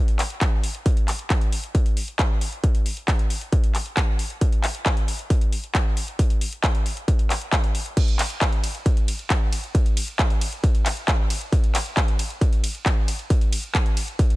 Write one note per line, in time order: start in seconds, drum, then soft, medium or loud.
0.08 closed hi-hat soft
0.19 clap medium
0.19 open hi-hat loud
0.30 closed hi-hat soft
0.41 kick loud
0.41 clap loud
0.41 closed hi-hat medium
0.64 open hi-hat loud
0.75 closed hi-hat soft
0.86 kick loud
0.86 closed hi-hat medium
0.97 closed hi-hat soft
1.08 clap medium
1.08 open hi-hat loud
1.19 closed hi-hat soft
1.30 kick loud
1.30 clap loud
1.30 closed hi-hat medium
1.41 closed hi-hat soft
1.52 open hi-hat loud
1.64 closed hi-hat soft
1.75 kick loud
1.75 closed hi-hat medium
1.86 closed hi-hat soft
1.97 open hi-hat loud
2.08 closed hi-hat soft
2.19 kick loud
2.19 clap loud
2.19 closed hi-hat medium
2.41 open hi-hat loud
2.52 closed hi-hat soft
2.64 kick loud
2.64 closed hi-hat medium
2.75 closed hi-hat soft
2.86 open hi-hat loud
2.97 closed hi-hat soft
3.08 kick loud
3.08 clap loud
3.08 closed hi-hat medium
3.19 closed hi-hat soft
3.30 open hi-hat loud
3.41 closed hi-hat soft
3.52 kick loud
3.52 closed hi-hat medium
3.64 closed hi-hat soft
3.75 clap medium
3.75 open hi-hat medium
3.86 closed hi-hat soft
3.97 kick loud
3.97 clap loud
3.97 closed hi-hat medium
4.19 open hi-hat loud
4.30 closed hi-hat soft
4.41 kick loud
4.41 closed hi-hat loud
4.52 closed hi-hat soft
4.64 clap medium
4.64 open hi-hat loud
4.75 closed hi-hat soft
4.86 kick loud
4.86 clap loud
4.86 closed hi-hat medium
4.97 closed hi-hat soft
5.08 open hi-hat loud
5.19 closed hi-hat soft
5.30 kick loud
5.30 closed hi-hat medium
5.41 closed hi-hat soft
5.53 open hi-hat medium
5.64 closed hi-hat soft
5.75 kick loud
5.75 clap loud
5.75 closed hi-hat loud
5.97 open hi-hat loud
6.08 closed hi-hat soft
6.19 kick loud
6.19 closed hi-hat loud
6.30 closed hi-hat soft
6.41 open hi-hat loud
6.53 closed hi-hat soft
6.64 kick loud
6.64 clap loud
6.64 closed hi-hat loud
6.75 closed hi-hat soft
6.86 open hi-hat loud
6.97 closed hi-hat soft
7.08 kick loud
7.08 closed hi-hat loud
7.19 closed hi-hat soft
7.30 clap medium
7.30 open hi-hat medium
7.42 closed hi-hat soft
7.53 kick loud
7.53 clap loud
7.53 closed hi-hat loud
7.64 closed hi-hat soft
7.75 open hi-hat loud
7.86 closed hi-hat soft
7.97 kick loud
7.97 closed hi-hat loud
7.97 crash medium
8.08 closed hi-hat soft
8.19 clap medium
8.19 open hi-hat loud
8.19 ride medium
8.30 closed hi-hat soft
8.41 kick loud
8.41 clap loud
8.41 closed hi-hat medium
8.53 closed hi-hat soft
8.64 open hi-hat loud
8.64 ride medium
8.75 closed hi-hat soft
8.86 kick loud
8.86 closed hi-hat medium
8.97 closed hi-hat soft
9.08 open hi-hat loud
9.08 ride medium
9.19 closed hi-hat soft
9.30 kick loud
9.30 clap loud
9.30 closed hi-hat loud
9.53 open hi-hat loud
9.53 ride medium
9.64 closed hi-hat soft
9.75 kick loud
9.75 closed hi-hat loud
9.86 closed hi-hat soft
9.97 open hi-hat loud
9.97 ride medium
10.08 closed hi-hat soft
10.19 kick loud
10.19 clap loud
10.19 closed hi-hat medium
10.30 closed hi-hat soft
10.41 open hi-hat loud
10.41 ride medium
10.53 closed hi-hat soft
10.64 kick loud
10.64 closed hi-hat medium
10.75 closed hi-hat soft
10.86 clap medium
10.86 open hi-hat loud
10.86 ride medium
10.97 closed hi-hat soft
11.08 kick loud
11.08 clap loud
11.08 closed hi-hat medium
11.30 open hi-hat loud
11.30 ride medium
11.41 closed hi-hat soft
11.53 kick loud
11.53 closed hi-hat medium
11.64 closed hi-hat soft
11.75 clap medium
11.75 open hi-hat loud
11.75 ride medium
11.86 closed hi-hat soft
11.97 kick loud
11.97 clap loud
11.97 closed hi-hat medium
12.08 closed hi-hat soft
12.19 open hi-hat loud
12.19 ride medium
12.30 closed hi-hat soft
12.41 kick loud
12.41 closed hi-hat medium
12.53 closed hi-hat soft
12.64 open hi-hat loud
12.64 ride medium
12.75 closed hi-hat soft
12.86 kick loud
12.86 clap loud
12.86 closed hi-hat medium
13.08 open hi-hat loud
13.08 ride medium
13.19 closed hi-hat soft
13.30 kick loud
13.30 closed hi-hat medium
13.41 closed hi-hat soft
13.53 open hi-hat loud
13.53 ride medium
13.64 closed hi-hat soft
13.75 kick loud
13.75 clap loud
13.75 closed hi-hat medium
13.86 closed hi-hat soft
13.97 open hi-hat loud
13.97 ride medium
14.08 closed hi-hat soft
14.19 kick loud
14.19 closed hi-hat medium
14.30 closed hi-hat soft